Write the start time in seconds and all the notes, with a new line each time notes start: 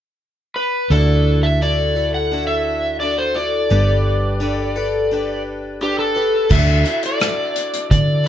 0.56 B4
0.90 D2 D3 D4 E4 F#4 A4
1.43 E5
1.61 D4 E4 F#4 A4 D5
1.96 E4 F#4 A4
2.14 F#5
2.31 D4 E4 F#4 A4
2.47 E5
3.00 D4 E4 F#4 A4 D5
3.18 C5
3.34 E4 F#4 A4 D5
3.70 G1 G3 D4 G4 A4 B4
4.40 D4 G4 A4 B4
4.76 G4 A4 B4
5.11 D4 G4 A4 B4
5.81 D4 G4 A4 B4
5.99 A4
6.15 G4 A4 B4
6.49 D2 D3 D4 E4 F#4 A4 E5, kick, crash
6.84 E4 F#4 A4, closed hi-hat
7.03 D5, closed hi-hat
7.20 D4 E4 F#4 A4, cross-stick, closed hi-hat
7.56 closed hi-hat
7.74 closed hi-hat
7.91 D3 D5, kick, closed hi-hat
8.24 A4